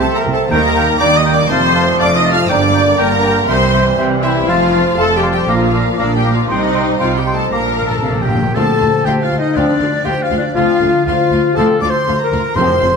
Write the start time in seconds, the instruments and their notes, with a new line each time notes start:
Already playing: harp C3 C4 C5 E5 G5, trombone section C4, clarinet E5, oboe G5, violin section A5, flute C6
0.00 trombone section F3, french horn section A3, viola section A4, violin section A5, harp E6
0.13 french horn section A#3, harp G5, violin section A#5
0.18 viola section A#4
0.24 double bass section C2, cello section C3, harp C5
0.32 french horn section A3, viola section A4, violin section A5
0.38 harp E5
0.48 double bass section D#2, cello section D#3, harp D#3, trombone section G3 A#3, french horn section A#3, viola section A#4, oboe G5, clarinet G5, violin section A#5, flute A#5
0.63 harp A#3
0.74 harp D#5, oboe G5, clarinet G5, flute A#5
0.87 harp G5
0.99 double bass section D#2, cello section D#3, french horn section D4, viola section D5, clarinet G5, oboe G5, flute A#5, violin section D6, harp D#6
1.12 viola section D#5, harp G5
1.17 french horn section D#4, violin section D#6
1.25 harp A#4, oboe G5, clarinet G5, flute A#5
1.32 french horn section D4, viola section D5, violin section D6
1.38 harp D#5
1.47 double bass section F1, cello section F2, harp F2, trombone section F3 A3, french horn section C4, viola section C5, oboe A5, flute A5, violin section C6
1.51 clarinet F5
1.63 harp A3
1.74 harp C5, clarinet F5, oboe A5, flute A5
1.86 harp F5
1.98 double bass section F1, cello section F2, french horn section D4, viola section D5, clarinet F5, oboe A5, flute A5, harp C6, violin section D6
2.10 harp F5
2.15 french horn section D#4, viola section D#5, violin section D#6
2.24 harp A4, clarinet F5, oboe A5, flute A5
2.31 french horn section F4, harp C5, viola section F5, violin section F6
2.47 double bass section G1, harp G2, cello section G2, trombone section D3 A#3, french horn section D4, viola section D5, clarinet G5, oboe G5, violin section D6
2.52 flute A#5
2.61 harp G3
2.74 harp A#4, oboe G5, clarinet G5, flute A#5
2.86 harp D5
2.97 double bass section G1, cello section G2, trombone section D3 A#3, french horn section A#3, viola section A#4, clarinet G5, oboe G5, violin section A#5, harp A#5, flute A#5
3.11 harp D5
3.22 harp G4, clarinet G5, oboe G5, flute A#5
3.36 harp A#4
3.47 double bass section C2, harp C3, cello section C3, trombone section E3 G3, french horn section C4, viola section C5, clarinet E5, oboe G5, violin section C6, flute C6
3.61 harp G3
3.73 harp C5, clarinet E5, oboe G5, flute C6
3.86 harp E5
3.98 double bass section C2, cello section C3, clarinet E5, oboe G5, harp C6, flute C6
4.10 harp E5
4.22 french horn section E3, viola section E4, harp G4, violin section E5, clarinet E5, oboe G5, flute C6
4.35 harp C5
4.48 double bass section F1, harp F2, cello section F2, french horn section F3, trombone section F3 A3, viola section F4, violin section F5, clarinet F5, oboe A5, flute C6
4.60 harp A3
4.73 harp C5, clarinet F5, oboe A5, flute C6
4.86 harp F5
4.96 double bass section F1, cello section F2, trombone section F3 A3, french horn section A3, viola section A4, clarinet F5, violin section A5, harp C6, flute C6
5.00 oboe A5
5.11 harp F5
5.15 french horn section G3, viola section G4, violin section G5
5.22 harp A4, clarinet F5, oboe A5, flute C6
5.32 french horn section G3, viola section G4, harp C5, violin section G5
5.48 double bass section A#1, cello section A#2, harp A#2, trombone section F3 D4, french horn section F3, viola section F4, clarinet F5, violin section F5, oboe A#5, flute D6
5.62 harp A#3
5.74 harp D5, clarinet F5, oboe A#5, flute D6
5.86 harp A#4
5.97 double bass section A#1, cello section A#2, french horn section D3, trombone section F3 D4, viola section D4, violin section D5, clarinet F5, oboe A#5, flute D6, harp D6
6.12 french horn section G3, viola section G4, harp D5, violin section G5
6.24 harp A#4, clarinet F5, oboe A#5, flute D6
6.32 french horn section F3, viola section F4, violin section F5
6.38 harp D5
6.48 double bass section C2, cello section C3, harp C3, french horn section D#3, trombone section G3 D#4, viola section D#4, violin section D#5, clarinet G5, flute C6, oboe C6
6.62 harp G3
6.74 harp C5, clarinet G5, flute C6, oboe C6
6.87 harp D#5
6.98 double bass section C2, cello section C3, french horn section F3, viola section F4, violin section F5, clarinet G5, flute C6, oboe C6, harp C6
7.13 french horn section G3, harp D#5, violin section G5
7.18 viola section G4, violin section G5
7.26 harp G4, clarinet G5, oboe C6, flute C6
7.33 french horn section A3, viola section A4, violin section A5
7.39 harp C5
7.51 double bass section A#1, harp A#2, cello section A#2, timpani A#2, trombone section F3 D4, french horn section A#3, viola section A#4, clarinet F5, violin section A#5, oboe A#5, flute D6
7.60 timpani A#2
7.65 timpani A#2, harp A#3
7.74 timpani A#2, french horn section A#4, oboe A#4, harp D5, clarinet F5, flute A#5
7.78 timpani A#2, violin section A#5
7.87 timpani A#2, french horn section A4, oboe A4, violin section A5, flute A5
7.91 harp F5
7.98 timpani A#2
8.03 double bass section A#1, timpani A#2, cello section C3, clarinet F5, harp D6
8.13 timpani A#2, harp F5
8.20 timpani A#2, french horn section G4, oboe G4, violin section G5, flute G5
8.28 timpani A#2, cello section A#2, harp A#4, clarinet F5
8.35 timpani A#2
8.43 timpani A#2, harp D5
8.54 double bass section D2, cello section D2, harp D3, trombone section F3 C4, viola section A3 F4, french horn section A4, oboe A4, violin section F5 A5 C6, flute A5
8.78 double bass section D2, cello section D2, viola section A3 F4, harp C4, violin section F5 C6
9.05 double bass section D2, cello section D2, viola section A3 F4, oboe G4, french horn section G4, harp C5, violin section F5 G5 C6, flute G5
9.22 oboe F4, french horn section F4, violin section F5, flute F5
9.30 double bass section D2, cello section D2, viola section A3 F4, harp F4, violin section F5 C6
9.38 oboe D#4, french horn section D#4, flute D#5, violin section D#5
9.55 cello section D2, double bass section D2, trombone section F3 C4, viola section A3 F4, oboe D4, harp D4, french horn section D4, flute D5, violin section D5 F5 C6
9.79 cello section D2, double bass section D2, harp F3, viola section A3 F4, violin section F5 C6
10.04 cello section D2, double bass section D2, viola section F4, oboe G4, french horn section G4, harp C5, violin section F5 G5 C6, flute G5
10.08 viola section A3
10.22 oboe F4, french horn section F4, flute F5, violin section F5
10.30 cello section D2, double bass section D2, viola section A3 F4, harp F4, violin section F5 C6
10.37 oboe D4, french horn section D4, flute D5, violin section D5
10.55 cello section D2, double bass section D2, harp D3, trombone section F3, french horn section F4, oboe F4, viola section F4, flute F5, violin section F5 C6
10.59 viola section A3, trombone section C4
10.81 cello section D2, double bass section D2, viola section A3, violin section F5 C6
10.85 viola section F4
11.06 double bass section D2, cello section D2, viola section A3 F4, oboe F4, french horn section F4, harp C5, flute F5, violin section F5 C6
11.31 double bass section D2, cello section D2, viola section A3 F4, harp F4, violin section F5 C6
11.55 double bass section D2, cello section D2, trombone section F3 C4, harp D4, french horn section A4, oboe A4, violin section F5 A5 C6, flute A5
11.59 viola section A3 F4
11.80 cello section D2, double bass section D2, viola section A3 F4, french horn section D5, oboe D5, violin section F5 C6 D6, flute D6
11.88 french horn section C5, oboe C5, violin section C6, flute C6
12.06 double bass section D2, cello section D2, viola section A3 F4, harp C5, violin section F5 C6
12.19 french horn section A#4, violin section A#5, flute A#5
12.24 oboe A#4
12.31 cello section D2, double bass section D2, viola section A3 F4, harp F4, violin section F5 C6
12.55 double bass section F1, timpani F2, harp F2, cello section F2, viola section A3 F4, oboe C5, french horn section C5, violin section F5 C6, flute C6
12.59 trombone section F3 C4
12.80 double bass section F1, cello section F2, harp A3, viola section A3 F4, violin section F5 C6